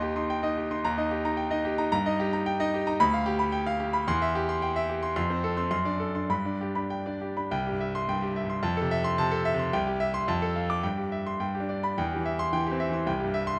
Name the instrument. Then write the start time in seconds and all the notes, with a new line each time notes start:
grand piano
Already playing: D#2 D#4 D#5 C6
0.02 G4
0.16 D#4 C6
0.30 G5
0.43 D#4 D#5
0.57 G4
0.71 D#4 C6
0.85 D#2 A#5
0.98 D#4 D#5
1.11 G4
1.25 D#4 A#5
1.37 G5
1.51 D#4 D#5
1.65 G4
1.78 D#4 A#5
1.92 G2 A#5
2.06 D#4 D#5
2.20 G4
2.33 D#4 A#5
2.46 G5
2.60 D#4 D#5
2.74 G4
2.87 D#4 A#5
3.00 D2 B5
3.13 F5
3.26 G4
3.39 B5
3.52 G5
3.67 F5
3.80 G4
3.93 B5
4.08 E2 C6
4.22 E5
4.35 G4
4.49 C6
4.62 G5
4.76 E5
4.89 G4
5.03 C6
5.16 F2 C6
5.30 C4 C5
5.44 A4
5.57 C4 C6
5.71 F#2 C6
5.85 D4 D5
6.00 A4
6.15 D4 C6
6.30 G2 B5
6.45 D4 D5
6.61 G4
6.75 D4 B5
6.90 G5
7.06 D4 D5
7.21 G4
7.37 D4 B5
7.51 C2 G5
7.67 G4
7.71 G2
7.80 E5
7.95 C6
8.09 G2 G5
8.22 G4
8.36 E5
8.45 G2
8.50 C6
8.63 F2 A5
8.77 A4
8.81 C3
8.91 E5
9.04 C6
9.18 C3 A5
9.31 A4
9.45 E5
9.54 C3
9.59 C6
9.73 C2 G5
9.87 G4
10.00 E5
10.14 C6
10.28 F2 A5
10.42 A4
10.56 F5
10.70 D6
10.83 G2 G5
10.98 G4
11.12 E5
11.27 C6
11.40 G2 G5
11.55 G4
11.60 D4
11.69 D5
11.83 B5
11.98 E2 G5
12.12 G4
12.16 E3
12.26 E5
12.39 C6
12.53 E3 G5
12.66 G4
12.71 C4
12.80 E5
12.89 E3 C6
13.07 C2 G5
13.20 G4
13.24 G2
13.34 E5
13.47 C6